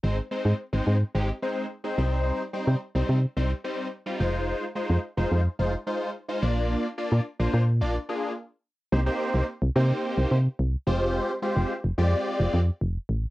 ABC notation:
X:1
M:4/4
L:1/16
Q:1/4=108
K:Cm
V:1 name="Analog polysynth"
[A,CEc] z [A,CEc]2 z [A,CEc]2 z [A,CEG] z [A,CEc]2 z [A,CEc] [G,CEc]2- | [G,CEc] z [G,CEc]2 z [G,CEc]2 z [G,CEc] z [G,CEc]2 z [G,CEF] [A,EFc]2- | [A,EFc] z [A,EFc]2 z [A,EFc]2 z [A,EFc] z [A,EFc]2 z [A,EFc] [B,DFd]2- | [B,DFd] z [B,DFd]2 z [B,DFc]2 z [B,DFd] z [B,DFA]2 z4 |
[B,CEGc] [B,CEGc]3 z2 [B,CEGc]4 z4 [A,CFGc]2- | [A,CFGc] z [A,CFGc]2 z2 [A,CFGd]4 z6 |]
V:2 name="FM bass" clef=bass
A,,,2 z A,, z A,,, A,,2 A,,,2 z4 C,,2- | C,,2 z C, z C,, C,2 C,,2 z4 F,,,2- | F,,,2 z F,, z F,,, F,,2 F,,,2 z4 B,,,2- | B,,,2 z B,, z B,,, B,,2 B,,,2 z6 |
C,,2 z C,, z C,, C,2 z C,, C,2 C,,2 F,,,2- | F,,,2 z F,,, z F,,, F,,2 z F,,, F,,2 F,,,2 =A,,,2 |]